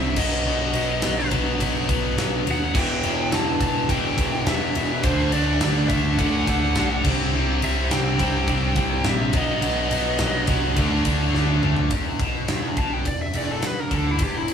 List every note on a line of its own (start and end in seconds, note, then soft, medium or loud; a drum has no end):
0.00 0.14 C2 medium
0.00 0.15 C3 medium
0.00 0.17 C3 medium
0.00 0.16 G3 medium
0.00 0.15 C4 medium
0.00 0.16 C4 medium
0.00 0.17 E5 loud
0.16 0.42 B1 medium
0.16 0.45 B2 medium
0.16 0.45 F#3 loud
0.16 0.46 B3 loud
0.16 1.28 D#5 medium
0.16 kick loud
0.16 crash loud
0.45 0.71 B1 medium
0.45 0.74 B2 medium
0.45 0.75 F#3 medium
0.45 0.76 B3 loud
0.73 0.99 B1 medium
0.73 1.02 B2 medium
0.73 1.03 F#3 medium
0.73 1.04 B3 loud
0.73 ride medium
1.02 1.29 B1 loud
1.02 1.31 B2 medium
1.02 1.31 F#3 medium
1.02 1.33 B3 loud
1.02 snare loud
1.02 ride loud
1.31 1.56 B1 medium
1.31 1.59 B2 medium
1.31 1.60 F#3 medium
1.31 1.60 B3 loud
1.31 kick medium
1.31 ride medium
1.60 1.85 B1 loud
1.60 1.88 B2 loud
1.60 1.88 F#3 loud
1.60 1.89 B3 loud
1.60 kick medium
1.60 ride loud
1.89 2.14 B1 medium
1.89 2.16 B2 medium
1.89 2.17 F#3 medium
1.89 2.17 B3 medium
1.89 kick medium
1.89 ride medium
2.17 2.42 B1 medium
2.17 2.45 B2 medium
2.17 2.46 F#3 medium
2.17 2.47 B3 medium
2.17 snare loud
2.17 ride medium
2.47 2.72 D#2 medium
2.47 2.73 B2 medium
2.47 2.74 F#3 medium
2.47 2.74 B3 medium
2.47 ride medium
2.51 2.78 F#5 loud
2.75 3.00 E1 loud
2.75 3.03 E2 medium
2.75 3.03 B2 medium
2.75 3.03 E3 loud
2.75 3.30 G5 loud
2.75 kick loud
2.75 crash loud
3.03 3.29 E1 medium
3.03 3.32 E2 medium
3.03 3.32 B2 medium
3.03 3.32 E3 loud
3.03 ride medium
3.32 3.57 E1 loud
3.32 3.60 E2 medium
3.32 3.61 B2 medium
3.32 3.61 E3 loud
3.32 3.60 A5 loud
3.32 snare loud
3.32 ride loud
3.60 3.86 E1 medium
3.60 3.90 E2 medium
3.60 3.91 B2 medium
3.60 3.91 E3 loud
3.60 3.90 A5 medium
3.60 kick medium
3.60 ride medium
3.89 4.14 E1 loud
3.89 4.18 E2 loud
3.89 4.19 B2 loud
3.89 4.19 E3 loud
3.89 4.44 G5 loud
3.89 kick medium
3.89 ride loud
4.17 4.43 E1 loud
4.17 4.47 E2 medium
4.17 4.48 B2 medium
4.17 4.48 E3 medium
4.17 kick loud
4.17 ride medium
4.46 4.72 E1 medium
4.46 4.76 E2 medium
4.46 4.76 B2 medium
4.46 4.77 E3 medium
4.46 5.06 E5 loud
4.46 snare loud
4.46 ride loud
4.75 5.05 E1 medium
4.75 5.03 E2 medium
4.75 5.03 B2 medium
4.75 5.04 E3 medium
4.75 ride medium
5.03 5.29 D2 loud
5.03 5.33 D3 medium
5.03 5.34 A3 loud
5.03 5.34 D4 loud
5.03 5.34 C5 medium
5.03 kick loud
5.03 ride loud
5.32 5.58 D2 medium
5.32 5.62 D3 medium
5.32 5.63 A3 medium
5.32 5.63 D4 medium
5.32 5.88 D5 medium
5.32 ride medium
5.61 5.87 D2 loud
5.61 5.90 D3 medium
5.61 5.91 A3 medium
5.61 5.91 D4 loud
5.61 snare loud
5.61 ride loud
5.89 6.15 D2 medium
5.89 6.19 D3 medium
5.89 6.19 A3 medium
5.89 6.20 D4 loud
5.89 6.16 E5 medium
5.89 kick medium
5.89 ride medium
6.18 6.43 D2 loud
6.18 6.48 D3 loud
6.18 6.49 A3 loud
6.18 6.49 D4 loud
6.18 7.01 F#5 medium
6.18 kick medium
6.18 ride loud
6.47 6.72 D2 loud
6.47 6.76 D3 medium
6.47 6.77 A3 medium
6.47 6.78 D4 medium
6.47 kick medium
6.47 ride medium
6.75 7.01 B1 medium
6.75 7.04 D3 medium
6.75 7.04 A3 medium
6.75 7.04 D4 medium
6.75 snare loud
6.75 ride medium
7.04 7.30 C2 medium
7.04 7.34 C3 medium
7.04 7.34 G3 medium
7.04 7.34 C4 loud
7.04 kick loud
7.04 crash loud
7.33 7.58 C2 loud
7.33 7.62 C3 medium
7.33 7.63 G3 medium
7.33 7.63 C4 loud
7.62 7.87 C2 medium
7.62 7.90 C3 medium
7.62 7.91 G3 medium
7.62 7.91 C4 medium
7.62 7.90 E5 medium
7.62 ride medium
7.91 8.16 C2 loud
7.91 8.19 C3 medium
7.91 8.19 G3 medium
7.91 8.20 C4 loud
7.91 8.21 G5 loud
7.91 snare loud
7.91 ride loud
8.19 8.44 C2 medium
8.19 8.47 C3 medium
8.19 8.48 G3 medium
8.19 8.48 C4 medium
8.19 kick medium
8.19 ride medium
8.23 9.10 G5 loud
8.48 8.73 C2 loud
8.48 8.76 C3 loud
8.48 8.76 G3 loud
8.48 8.77 C4 loud
8.48 kick medium
8.48 ride medium
8.76 9.01 C2 loud
8.76 9.04 C3 medium
8.76 9.05 G3 medium
8.76 9.05 C4 loud
8.76 kick medium
8.76 ride medium
9.04 9.30 A#1 medium
9.04 9.32 C3 medium
9.04 9.33 G3 medium
9.04 9.33 C4 medium
9.04 snare loud
9.04 ride medium
9.09 9.36 E5 loud
9.33 9.58 B1 medium
9.33 9.62 B2 medium
9.33 9.63 F#3 loud
9.33 9.63 B3 loud
9.33 10.46 D#5 medium
9.33 kick loud
9.33 ride medium
9.62 9.87 B1 loud
9.62 9.91 B2 medium
9.62 9.91 F#3 medium
9.62 9.92 B3 loud
9.62 ride loud
9.91 10.16 B1 medium
9.91 10.20 B2 medium
9.91 10.20 F#3 medium
9.91 10.21 B3 medium
9.91 ride medium
10.18 10.45 B1 loud
10.18 10.47 B2 medium
10.18 10.48 F#3 medium
10.18 10.49 B3 medium
10.18 snare loud
10.18 ride loud
10.47 10.73 C2 medium
10.47 10.76 B2 medium
10.47 10.76 F#3 medium
10.47 10.76 B3 loud
10.47 kick medium
10.47 ride medium
10.76 11.02 D2 loud
10.76 11.04 D3 loud
10.76 11.05 A3 loud
10.76 11.05 D4 loud
10.76 kick medium
10.76 ride loud
11.05 11.30 D2 medium
11.05 11.34 D3 medium
11.05 11.35 A3 medium
11.05 11.35 D4 medium
11.05 kick medium
11.05 ride medium
11.35 11.60 D2 medium
11.35 11.62 D3 medium
11.35 11.62 A3 medium
11.35 11.62 D4 medium
11.35 snare medium
11.63 11.88 D2 medium
11.63 11.90 D3 medium
11.63 11.90 A3 medium
11.63 11.90 D4 medium
11.63 mid tom medium
11.76 floor tom loud
11.90 12.18 E1 medium
11.90 12.20 E2 medium
11.90 kick loud
11.90 ride medium
12.19 12.46 B1 medium
12.19 12.49 B2 loud
12.19 kick loud
12.19 ride medium
12.48 12.75 E1 medium
12.48 12.77 E2 loud
12.48 snare loud
12.48 ride medium
12.77 13.04 B1 loud
12.77 13.07 B2 medium
12.77 12.93 A5 medium
12.77 kick loud
12.77 ride medium
12.93 13.07 G5 medium
13.05 13.32 E1 medium
13.05 13.30 E2 medium
13.05 13.21 D5 medium
13.05 kick medium
13.05 ride medium
13.22 13.37 E5 medium
13.33 13.62 E1 loud
13.33 13.63 E2 loud
13.33 13.50 D5 medium
13.33 ride medium
13.51 13.67 A4 medium
13.62 snare loud
13.62 ride medium
13.67 13.80 B4 loud
13.80 13.93 A#4 medium
13.91 14.18 D2 medium
13.91 14.20 D3 medium
13.91 kick medium
13.91 ride medium
13.95 14.08 A4 medium
14.11 14.23 E4 medium
14.19 14.54 E1 medium
14.19 14.54 E2 medium
14.19 kick loud
14.19 ride loud
14.23 14.37 G4 medium
14.37 14.50 E4 medium
14.48 ride medium